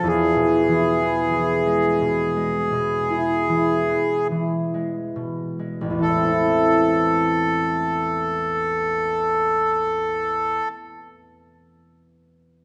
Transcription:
<<
  \new Staff \with { instrumentName = "Accordion" } { \time 4/4 \key a \minor \tempo 4 = 36 gis'2. r4 | a'1 | }
  \new Staff \with { instrumentName = "Harp" } { \clef bass \time 4/4 \key a \minor e,16 b,16 e16 b16 e16 gis16 b,16 gis16 b,16 e'16 e16 b16 e16 gis16 b,16 gis16 | <a,, e, e a c' e'>1 | }
>>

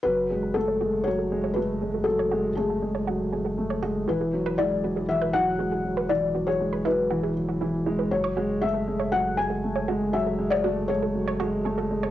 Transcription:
<<
  \new Staff \with { instrumentName = "Felt piano" } { \time 4/4 \key fis \minor \tempo 4 = 119 b'4 a'4 cis''4 b'4 | a'4 gis'2~ gis'8 r8 | b'4 d''4 e''8 fis''4. | d''8. cis''8. b'4 r4. |
cis''4 e''4 fis''8 gis''4. | e''8. d''8. cis''4 r4. | }
  \new Staff \with { instrumentName = "Synth arpeggio sound" } { \time 4/4 \key fis \minor fis'16 r16 gis'16 a'16 r16 cis''16 fis'16 r16 gis'16 a'16 r16 cis''16 fis'16 r16 gis'16 a'16 | r16 cis''16 fis'16 r16 gis'16 a'16 r16 cis''16 fis'16 r16 gis'16 a'16 r16 cis''16 fis'16 r16 | fis'16 gis'16 r16 b'16 e'16 r16 fis'16 gis'16 r16 b'16 e'16 r16 fis'16 gis'16 r16 b'16 | e'16 r16 fis'16 gis'16 r16 b'16 e'16 r16 fis'16 gis'16 r16 fis'16 e'16 r16 e'16 b'16 |
r16 cis''16 fis'16 r16 gis'16 a'16 r16 cis''16 fis'16 r16 gis'16 a'16 r16 cis''16 fis'16 r16 | gis'16 a'16 r16 cis''16 fis'16 r16 gis'16 a'16 r16 cis''16 fis'16 r16 gis'16 a'16 r16 cis''16 | }
  \new Staff \with { instrumentName = "Grand piano" } { \clef bass \time 4/4 \key fis \minor fis8 gis8 a8 gis8 fis8 gis8 a8 gis8 | fis8 gis8 a8 gis8 fis8 gis8 a8 gis8 | e8 fis8 gis8 fis8 e8 fis8 gis8 fis8 | e8 fis8 gis8 fis8 e8 fis8 e8 gis8 |
fis8 gis8 a8 gis8 fis8 gis8 a8 gis8 | fis8 gis8 a8 gis8 fis8 gis8 a8 gis8 | }
  \new Staff \with { instrumentName = "Analog synth bass" } { \clef bass \time 4/4 \key fis \minor fis,,1~ | fis,,1 | e,,1~ | e,,1 |
fis,,1~ | fis,,1 | }
>>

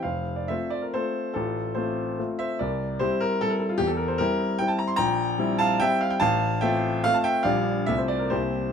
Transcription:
\new Staff \with { instrumentName = "Grand piano" } { \time 3/4 \key f \major \tempo 4 = 145 << { <c'' f''>8. d''16 <c'' e''>8 d''16 bes'16 <a' c''>4 | <f' a'>4 <a' c''>4 r8 <c'' e''>8 | <bes' d''>4 <g' c''>8 <g' bes'>8 a'16 bes'16 a'16 f'16 | g'16 a'16 bes'16 c''16 <g' bes'>4 g''16 a''16 bes''16 c'''16 |
<g'' bes''>4. <f'' a''>8 <e'' g''>8 f''16 g''16 | <f'' a''>4 <e'' g''>4 f''16 a''16 <e'' g''>8 | <d'' f''>4 e''16 c''16 d''16 bes'16 <g' c''>4 | } \\ { f,,4 <a c' f'>4 <a c' f'>4 | a,,4 <a c' f'>4 <a c' f'>4 | c,4 <g c' e'>4 <g c' e'>4 | e,4 <g c' e'>4 <g c' e'>4 |
bes,,4 <g c' e'>4 <g c' e'>4 | a,,4 <a c' f'>4 <a c' f'>4 | <bes,, g d' g'>4 <c, a c' f'>4 <c, bes c' e'>4 | } >> }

